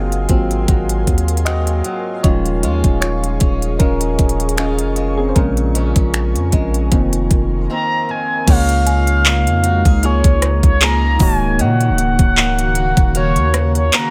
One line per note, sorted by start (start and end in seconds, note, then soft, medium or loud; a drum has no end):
0.00 0.27 F#1 medium
0.00 2.24 G#2 medium
0.00 0.30 F#3 medium
0.00 0.67 F#3 medium
0.00 0.30 A#3 soft
0.00 0.28 C4 medium
0.00 0.30 C4 soft
0.00 0.30 F4 medium
0.00 1.47 F4 medium
0.00 0.65 F#4 medium
0.00 2.25 G#4 medium
0.00 2.20 A#4 medium
0.00 0.64 D#5 medium
0.00 2.25 F5 medium
0.00 8.44 F5 medium
0.00 2.21 G#5 medium
0.00 2.21 C6 medium
0.12 closed hi-hat medium
0.29 0.67 G#1 medium
0.29 0.64 F#3 soft
0.29 0.65 A#3 soft
0.29 1.46 C4 medium
0.29 0.65 C4 soft
0.29 0.65 F4 soft
0.29 kick medium
0.29 closed hi-hat medium
0.51 closed hi-hat soft
0.68 1.06 G#1 loud
0.68 1.45 F#3 medium
0.68 kick medium
0.68 closed hi-hat medium
0.89 closed hi-hat medium
1.07 1.82 D#2 loud
1.07 kick medium
1.07 closed hi-hat medium
1.18 closed hi-hat medium
1.28 closed hi-hat medium
1.37 closed hi-hat medium
1.45 1.84 F#3 medium
1.45 2.33 C4 medium
1.45 2.63 F4 medium
1.45 2.21 F#4 medium
1.45 2.26 D#5 loud
1.45 finger snap loud
1.45 closed hi-hat soft
1.67 closed hi-hat medium
1.84 2.24 F#3 medium
1.84 closed hi-hat medium
2.23 2.65 D#1 loud
2.23 5.36 D#3 medium
2.23 5.32 F3 medium
2.23 5.32 G#3 soft
2.23 3.80 C#4 medium
2.23 2.99 F4 medium
2.23 5.33 G#4 medium
2.23 3.00 C#5 medium
2.23 5.33 D#5 medium
2.23 6.88 C#6 medium
2.23 kick loud
2.23 closed hi-hat medium
2.46 closed hi-hat soft
2.63 2.83 D#2 medium
2.63 3.80 G#3 medium
2.63 3.41 C#4 medium
2.63 4.59 F4 medium
2.63 closed hi-hat medium
2.84 3.39 D#1 loud
2.84 kick medium
2.84 closed hi-hat soft
3.01 3.77 F4 medium
3.01 3.82 C#5 medium
3.01 finger snap medium
3.01 closed hi-hat medium
3.24 closed hi-hat medium
3.40 3.78 D#1 loud
3.40 4.58 C#4 medium
3.40 kick medium
3.40 closed hi-hat medium
3.62 closed hi-hat soft
3.79 4.17 D#1 loud
3.79 4.58 G#3 medium
3.79 4.55 C#4 medium
3.79 4.60 A#4 medium
3.79 kick medium
3.79 closed hi-hat medium
4.01 closed hi-hat medium
4.19 4.81 D#1 loud
4.19 kick medium
4.19 closed hi-hat medium
4.29 closed hi-hat medium
4.40 closed hi-hat medium
4.49 closed hi-hat medium
4.57 4.96 G#3 medium
4.57 5.45 C#4 medium
4.57 5.15 C#4 medium
4.57 7.73 F4 medium
4.57 5.16 G#4 medium
4.57 finger snap loud
4.57 closed hi-hat soft
4.79 5.33 F1 medium
4.79 closed hi-hat medium
4.96 5.44 G#3 medium
4.96 closed hi-hat medium
5.17 5.29 C4 medium
5.17 5.30 G#4 medium
5.29 5.36 C5 medium
5.35 5.94 A#1 loud
5.35 6.92 A#2 medium
5.35 6.88 C#3 soft
5.35 6.88 G#3 soft
5.35 6.88 C4 medium
5.35 6.88 C#4 medium
5.35 6.87 A#4 medium
5.35 8.44 A#4 medium
5.35 6.90 G#5 medium
5.35 kick loud
5.35 closed hi-hat medium
5.57 closed hi-hat soft
5.75 7.69 F3 medium
5.75 6.52 G#3 medium
5.75 7.01 C#4 medium
5.75 closed hi-hat medium
5.96 6.37 A#1 loud
5.96 kick medium
5.96 closed hi-hat soft
6.14 finger snap loud
6.14 closed hi-hat medium
6.35 6.52 F2 medium
6.35 closed hi-hat medium
6.52 6.90 A#1 loud
6.52 7.00 G#3 medium
6.52 kick medium
6.52 closed hi-hat medium
6.74 closed hi-hat soft
6.92 7.29 F1 loud
6.92 8.56 F2 medium
6.92 8.44 D#3 medium
6.92 8.44 A#3 soft
6.92 8.44 C4 medium
6.92 8.46 D#5 medium
6.92 8.46 C6 medium
6.92 kick medium
6.92 closed hi-hat medium
7.13 closed hi-hat medium
7.31 7.68 F1 loud
7.31 kick medium
7.31 closed hi-hat medium
7.70 8.08 D#3 medium
7.70 9.25 A#3 medium
7.70 8.57 C4 medium
7.70 8.12 A#5 loud
8.09 8.56 D#3 medium
8.09 8.51 G#5 loud
8.46 9.48 C#2 loud
8.46 11.16 C#3 medium
8.46 11.29 C#3 medium
8.46 11.18 C#3 medium
8.46 11.18 G#3 medium
8.46 11.16 A#3 medium
8.46 14.10 A#3 medium
8.46 11.18 D#4 medium
8.46 11.17 F4 medium
8.46 11.17 C#5 medium
8.46 10.07 F5 loud
8.46 kick loud
8.46 closed hi-hat medium
8.46 crash loud
8.69 closed hi-hat soft
8.86 11.21 G#5 medium
8.86 closed hi-hat medium
9.07 closed hi-hat medium
9.26 10.03 A#3 medium
9.26 clap loud
9.47 9.84 F2 loud
9.47 closed hi-hat medium
9.64 9.86 F#4 medium
9.64 closed hi-hat medium
9.85 10.23 C#2 loud
9.85 10.03 G#4 medium
9.85 kick medium
9.85 closed hi-hat soft
10.03 10.81 A#3 medium
10.03 10.81 F4 medium
10.03 10.81 G#4 medium
10.03 10.64 C#5 loud
10.03 closed hi-hat medium
10.24 10.62 C#2 medium
10.24 kick medium
10.24 closed hi-hat medium
10.42 cross-stick medium
10.42 closed hi-hat medium
10.63 11.18 C#2 loud
10.63 10.85 C#5 loud
10.63 kick medium
10.63 closed hi-hat soft
10.81 12.37 A#3 medium
10.81 11.29 F4 medium
10.81 11.55 G#4 medium
10.81 11.29 G#4 medium
10.81 11.24 A#5 loud
10.81 clap loud
10.81 closed hi-hat medium
11.19 11.61 C#1 loud
11.19 14.10 C#3 medium
11.19 14.10 D#3 medium
11.19 11.58 D#3 medium
11.19 14.10 A#3 medium
11.19 14.10 F#4 loud
11.19 14.10 F#4 medium
11.19 14.10 C#5 medium
11.19 11.63 G#5 loud
11.19 kick loud
11.19 open hi-hat medium
11.59 11.91 A#2 loud
11.59 14.10 D#3 medium
11.59 13.16 F#5 loud
11.59 closed hi-hat medium
11.81 closed hi-hat soft
11.89 12.18 C#1 loud
11.98 closed hi-hat medium
12.19 12.94 C#1 loud
12.19 kick medium
12.19 closed hi-hat medium
12.37 13.15 A#3 medium
12.37 clap loud
12.59 closed hi-hat medium
12.75 13.16 F#4 medium
12.75 closed hi-hat medium
12.97 13.38 D#1 loud
12.97 kick medium
12.97 closed hi-hat soft
13.15 13.93 A#3 medium
13.15 13.93 C#4 medium
13.15 13.94 F#4 medium
13.15 13.72 C#5 loud
13.15 closed hi-hat medium
13.36 13.90 D#2 loud
13.36 closed hi-hat soft
13.54 cross-stick medium
13.54 closed hi-hat medium
13.75 13.96 C#5 loud
13.75 closed hi-hat soft
13.93 14.10 A#3 medium
13.93 14.10 C#4 medium
13.93 14.10 F#4 medium
13.93 14.10 A#5 loud
13.93 clap loud
13.93 closed hi-hat medium